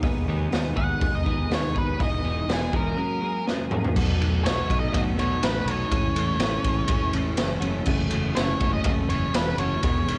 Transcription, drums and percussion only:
0.03 kick loud
0.03 open hi-hat soft
0.52 snare loud
0.52 open hi-hat soft
0.77 kick medium
1.01 kick loud
1.01 open hi-hat soft
1.26 kick medium
1.51 snare loud
1.51 open hi-hat soft
1.76 kick medium
2.00 kick medium
2.00 open hi-hat soft
2.49 snare loud
2.49 open hi-hat medium
2.73 kick medium
3.48 snare medium
3.71 mid tom medium
3.84 floor tom medium
3.96 kick loud
3.96 crash loud
4.21 ride medium
4.46 snare loud
4.46 ride medium
4.70 kick medium
4.70 ride medium
4.94 kick loud
4.94 ride medium
5.19 ride medium
5.43 snare loud
5.43 ride medium
5.68 ride medium
5.92 kick loud
5.92 ride medium
6.16 ride medium
6.40 snare loud
6.40 ride loud
6.64 kick medium
6.64 ride medium
6.88 kick loud
6.88 ride loud
7.13 ride medium
7.37 snare loud
7.37 ride loud
7.62 ride medium
7.85 kick loud
7.85 crash medium
8.11 ride medium
8.36 snare loud
8.36 ride medium
8.60 kick medium
8.60 ride medium
8.84 kick loud
8.84 ride medium
9.10 ride medium
9.34 snare loud
9.34 ride loud
9.58 ride medium
9.83 kick loud
9.83 ride medium
10.08 ride medium

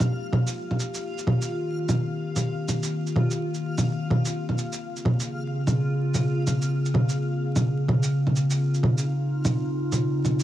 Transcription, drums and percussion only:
0.00 low bongo medium
0.00 shaker medium
0.33 low bongo medium
0.47 shaker medium
0.71 low bongo soft
0.80 shaker soft
0.94 shaker medium
1.18 shaker soft
1.27 low bongo medium
1.41 shaker medium
1.89 low bongo medium
1.89 shaker soft
2.36 low bongo soft
2.36 shaker soft
2.68 low bongo soft
2.68 shaker soft
2.83 shaker medium
3.07 shaker soft
3.16 low bongo medium
3.31 shaker soft
3.54 shaker soft
3.78 low bongo medium
3.78 shaker soft
4.10 low bongo medium
4.25 shaker soft
4.49 low bongo soft
4.58 shaker soft
4.73 shaker soft
4.96 shaker soft
5.05 low bongo medium
5.20 shaker soft
5.67 low bongo medium
5.67 shaker soft
6.14 low bongo soft
6.14 shaker soft
6.47 low bongo soft
6.47 shaker soft
6.62 shaker soft
6.85 shaker soft
6.94 low bongo medium
7.09 shaker soft
7.56 low bongo medium
7.56 shaker soft
7.88 low bongo medium
8.03 shaker soft
8.27 low bongo soft
8.36 shaker soft
8.50 shaker soft
8.74 shaker soft
8.83 low bongo medium
8.98 shaker soft
9.45 low bongo medium
9.45 shaker soft
9.92 low bongo soft
9.92 shaker soft
10.25 low bongo soft
10.25 shaker soft
10.39 shaker soft

